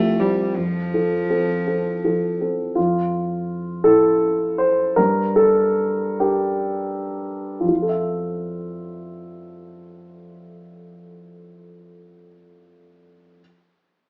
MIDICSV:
0, 0, Header, 1, 3, 480
1, 0, Start_track
1, 0, Key_signature, -1, "major"
1, 0, Tempo, 729927
1, 369, Time_signature, 6, 3, 24, 8
1, 2770, Tempo, 781250
1, 3730, Tempo, 878477
1, 4210, Tempo, 961538
1, 7925, End_track
2, 0, Start_track
2, 0, Title_t, "Grand piano"
2, 0, Program_c, 0, 0
2, 0, Control_c, 0, 64, 127
2, 0, Note_on_c, 0, 36, 48
2, 0, Note_on_c, 0, 53, 33
2, 0, Note_on_c, 0, 60, 29
2, 0, Note_on_c, 0, 67, 35
2, 104, Note_off_c, 0, 53, 0
2, 106, Note_off_c, 0, 67, 0
2, 129, Note_off_c, 0, 60, 0
2, 129, Note_on_c, 0, 60, 22
2, 129, Note_on_c, 0, 67, 24
2, 341, Note_off_c, 0, 36, 0
2, 345, Note_off_c, 0, 60, 0
2, 345, Note_off_c, 0, 67, 0
2, 372, Note_on_c, 0, 41, 30
2, 381, Control_c, 0, 64, 0
2, 505, Control_c, 0, 64, 127
2, 616, Note_on_c, 0, 53, 25
2, 618, Note_on_c, 0, 69, 28
2, 831, Note_off_c, 0, 53, 0
2, 832, Note_off_c, 0, 69, 0
2, 854, Note_on_c, 0, 60, 28
2, 857, Note_on_c, 0, 69, 29
2, 1070, Note_off_c, 0, 60, 0
2, 1072, Note_off_c, 0, 69, 0
2, 1097, Note_on_c, 0, 60, 24
2, 1101, Note_on_c, 0, 69, 22
2, 1313, Note_off_c, 0, 60, 0
2, 1315, Note_off_c, 0, 69, 0
2, 1343, Note_on_c, 0, 53, 24
2, 1347, Note_on_c, 0, 69, 26
2, 1558, Note_off_c, 0, 53, 0
2, 1560, Note_off_c, 0, 69, 0
2, 1586, Note_on_c, 0, 60, 21
2, 1586, Note_on_c, 0, 69, 21
2, 1793, Note_off_c, 0, 41, 0
2, 1798, Note_off_c, 0, 60, 0
2, 1798, Note_off_c, 0, 69, 0
2, 1810, Note_on_c, 0, 65, 46
2, 1825, Note_on_c, 0, 41, 34
2, 1829, Control_c, 0, 64, 0
2, 1951, Control_c, 0, 64, 127
2, 2499, Note_off_c, 0, 65, 0
2, 2525, Note_on_c, 0, 69, 62
2, 2536, Note_on_c, 0, 64, 30
2, 2974, Note_off_c, 0, 69, 0
2, 2998, Note_on_c, 0, 72, 53
2, 3214, Note_off_c, 0, 41, 0
2, 3215, Note_off_c, 0, 64, 0
2, 3218, Note_off_c, 0, 72, 0
2, 3231, Note_on_c, 0, 70, 64
2, 3237, Note_on_c, 0, 43, 47
2, 3249, Control_c, 0, 64, 0
2, 3377, Control_c, 0, 64, 127
2, 3459, Note_off_c, 0, 70, 0
2, 3474, Note_on_c, 0, 69, 58
2, 3940, Note_off_c, 0, 69, 0
2, 3962, Note_on_c, 0, 67, 50
2, 3963, Note_on_c, 0, 62, 28
2, 3966, Note_on_c, 0, 70, 30
2, 4672, Note_off_c, 0, 62, 0
2, 4672, Note_off_c, 0, 67, 0
2, 4673, Note_off_c, 0, 43, 0
2, 4673, Note_off_c, 0, 70, 0
2, 4684, Note_on_c, 0, 65, 37
2, 4689, Note_on_c, 0, 41, 26
2, 4706, Control_c, 0, 64, 0
2, 4724, Note_on_c, 0, 53, 26
2, 4752, Note_off_c, 0, 65, 0
2, 4759, Note_on_c, 0, 65, 26
2, 4794, Note_on_c, 0, 69, 25
2, 4811, Control_c, 0, 64, 127
2, 4828, Note_on_c, 0, 76, 28
2, 6911, Note_off_c, 0, 41, 0
2, 6947, Note_off_c, 0, 53, 0
2, 6982, Note_off_c, 0, 65, 0
2, 7017, Note_off_c, 0, 69, 0
2, 7050, Note_off_c, 0, 76, 0
2, 7581, Control_c, 0, 64, 0
2, 7925, End_track
3, 0, Start_track
3, 0, Title_t, "Cello"
3, 0, Program_c, 1, 42
3, 0, Note_on_c, 1, 57, 72
3, 128, Note_on_c, 1, 55, 48
3, 138, Note_off_c, 1, 57, 0
3, 377, Note_on_c, 1, 53, 56
3, 386, Note_off_c, 1, 55, 0
3, 1582, Note_off_c, 1, 53, 0
3, 7925, End_track
0, 0, End_of_file